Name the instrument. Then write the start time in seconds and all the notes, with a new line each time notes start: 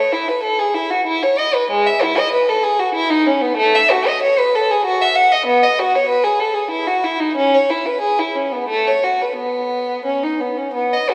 violin
Already playing: C#5
0.12 E4
0.28 B4
0.43 A4
0.59 G#4
0.75 E4
0.90 F#4
1.07 E4
1.23 C#5
1.38 D#5
1.54 B4
1.71 G#3
1.87 E5
2.03 E4
2.18 D#5
2.33 B4
2.49 A4
2.63 G#4
2.79 F#4
2.95 E4
3.10 D#4
3.26 C#4
3.41 B3
3.56 A3
3.75 E5
3.91 F#4
4.07 D#5
4.22 C#5
4.39 B4
4.55 A4
4.71 G#4
4.86 F#4
5.01 E5
5.15 F#5
5.32 D#5
5.46 B3
5.63 D#5
5.79 F#4
5.95 C#5
6.09 B4
6.24 G#4
6.40 A4
6.54 G#4
6.71 E4
6.87 F#4
7.04 E4
7.20 D#4
7.36 C#4
7.54 C#5
7.70 E4
7.86 B4
8.01 G#4
8.19 E4
8.35 C#4
8.52 B3
8.69 A3
8.87 C#5
9.04 F#4
9.21 B4
9.37 B3
10.05 C#4
10.23 D#4
10.40 B3
10.57 C#4
10.74 B3
10.93 D#5
11.10 F#4